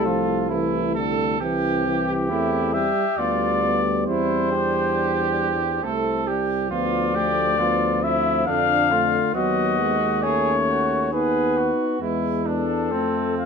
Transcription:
0.00 1.40 C2 medium
0.00 0.49 A3 medium
0.00 0.91 A4 medium
0.06 0.53 F3 medium
0.06 0.49 F4 medium
0.50 0.98 E3 medium
0.50 1.42 A3 soft
0.50 0.94 E4 medium
0.95 1.40 D3 medium
0.95 1.40 A4 medium
1.40 2.31 C2 medium
1.40 1.85 E3 medium
1.40 2.30 C4 medium
1.40 2.13 G4 medium
1.86 2.32 E3 medium
1.86 2.75 G4 medium
2.30 2.91 E2 medium
2.30 2.76 A3 medium
2.30 2.90 C4 medium
2.30 2.73 E4 medium
2.74 3.05 G3 medium
2.74 3.20 G4 medium
2.74 3.19 E5 medium
3.17 4.09 D2 medium
3.17 5.52 G3 medium
3.17 3.60 B3 medium
3.17 3.80 F4 medium
3.17 4.06 D5 medium
3.63 4.09 B3 medium
4.07 5.82 E2 medium
4.07 4.52 C4 medium
4.07 4.49 E4 medium
4.07 6.23 C5 medium
4.51 5.85 D4 medium
4.51 5.85 G4 medium
5.83 6.69 C2 medium
5.83 6.29 A3 medium
5.83 6.71 C4 soft
5.83 6.29 A4 medium
6.27 6.73 G3 soft
6.27 6.70 G4 medium
6.71 8.49 D2 medium
6.71 7.59 F3 medium
6.71 7.16 B3 medium
6.71 7.17 F4 medium
6.71 8.05 D5 medium
7.15 7.61 A3 medium
7.15 7.60 G4 medium
7.59 8.49 F3 soft
7.59 8.05 B3 medium
7.59 8.02 F4 medium
8.03 8.49 C4 medium
8.03 8.46 E4 medium
8.03 8.46 E5 medium
8.46 9.18 F2 medium
8.46 9.37 D3 medium
8.46 8.93 D4 medium
8.46 9.33 F5 medium
8.91 9.34 A3 medium
8.91 9.36 F4 medium
9.35 11.70 D#2 medium
9.35 9.82 F#3 medium
9.35 9.95 B3 medium
9.35 10.25 F#4 medium
9.35 10.24 D#5 medium
9.81 10.26 G#3 soft
10.23 11.12 A3 soft
10.23 11.14 C#4 soft
10.23 10.55 G#4 medium
10.23 11.12 C#5 medium
10.69 11.12 F#4 medium
11.12 12.00 B3 medium
11.12 12.00 D#4 soft
11.12 11.59 G#4 medium
11.12 12.00 B4 medium
11.57 12.01 F#4 medium
12.01 12.93 E2 medium
12.01 12.63 G#3 soft
12.01 12.45 B3 medium
12.01 12.48 E4 medium
12.46 12.93 B3 medium
12.46 12.93 D4 medium
12.46 13.34 A4 medium
12.91 13.46 F2 soft
12.91 13.46 A3 soft
12.91 13.46 C4 medium
13.38 13.46 F5 medium

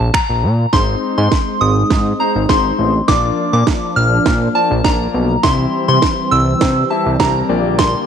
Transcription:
0.00 0.11 A#1 medium
0.00 0.15 A5 medium
0.14 0.20 A#1 soft
0.14 0.75 A#5 medium
0.14 finger snap loud
0.14 kick loud
0.30 0.45 A#1 medium
0.43 0.66 A#2 loud
0.73 0.96 G#1 loud
0.73 1.54 G#3 medium
0.73 3.06 G#3 medium
0.73 1.54 C4 medium
0.73 3.06 C4 medium
0.73 3.06 D#4 medium
0.73 1.54 D#4 medium
0.73 1.54 C5 medium
0.73 1.16 C6 loud
0.73 kick loud
0.73 snare medium
1.18 1.29 G#2 loud
1.18 1.62 C6 medium
1.32 kick loud
1.32 snare medium
1.61 1.84 G#1 medium
1.61 2.22 D#6 loud
1.90 2.13 G#2 loud
1.90 kick loud
1.90 snare medium
2.20 2.40 G#3 medium
2.20 2.41 C4 medium
2.20 2.41 D#4 medium
2.20 2.41 C5 medium
2.20 2.50 A#5 medium
2.35 2.46 G#1 medium
2.49 2.72 G#1 loud
2.49 2.90 G#3 medium
2.49 2.90 C4 medium
2.49 2.90 D#4 medium
2.49 2.90 C5 medium
2.49 3.10 C6 medium
2.49 kick loud
2.49 snare medium
2.79 3.02 A1 medium
3.08 3.31 A#1 loud
3.08 5.41 F3 medium
3.08 3.89 A#3 medium
3.08 5.41 A#3 medium
3.08 3.89 D4 medium
3.08 5.41 D4 medium
3.08 3.89 F4 medium
3.08 3.89 D5 medium
3.08 3.52 D6 loud
3.08 kick loud
3.08 snare medium
3.53 3.64 A#2 loud
3.53 3.98 D6 loud
3.67 kick loud
3.67 snare medium
3.96 4.19 A#1 medium
3.96 4.51 F6 loud
4.26 4.49 A#2 loud
4.26 kick loud
4.26 snare medium
4.55 4.76 A#3 medium
4.55 4.76 D4 medium
4.55 4.76 F4 medium
4.55 4.76 D5 medium
4.55 4.85 A5 medium
4.71 4.82 A#1 medium
4.84 5.07 A#1 medium
4.84 5.25 A#3 medium
4.84 5.25 D4 medium
4.84 5.25 F4 medium
4.84 5.26 D5 medium
4.84 5.45 A#5 medium
4.84 kick loud
4.84 snare medium
5.14 5.37 B1 medium
5.43 5.66 C2 loud
5.43 7.47 E3 medium
5.43 8.06 G3 medium
5.43 6.24 C4 medium
5.43 7.47 C4 medium
5.43 6.24 E4 medium
5.43 6.24 G4 medium
5.43 6.24 E5 medium
5.43 5.87 C6 loud
5.43 kick loud
5.43 snare medium
5.88 5.99 C3 medium
5.88 6.33 C6 medium
6.02 kick loud
6.02 snare medium
6.31 6.54 C2 medium
6.31 6.86 E6 loud
6.61 6.84 C3 loud
6.61 kick loud
6.61 snare medium
6.90 7.11 C4 medium
6.90 7.11 E4 medium
6.90 7.11 G4 medium
6.90 7.11 E5 medium
6.90 7.21 A5 medium
7.06 7.17 C2 medium
7.20 7.43 C2 loud
7.20 7.49 C4 medium
7.20 7.49 E4 medium
7.20 7.48 G4 medium
7.20 7.49 A#4 medium
7.20 7.80 A#5 loud
7.20 kick loud
7.20 snare medium
7.49 7.95 A#1 medium
7.49 8.06 D3 medium
7.49 8.06 A#3 medium
7.49 8.06 A#3 loud
7.49 8.06 D4 medium
7.49 8.06 G4 medium
7.49 8.06 D5 medium
7.79 8.06 C6 loud
7.79 kick loud
7.79 snare medium

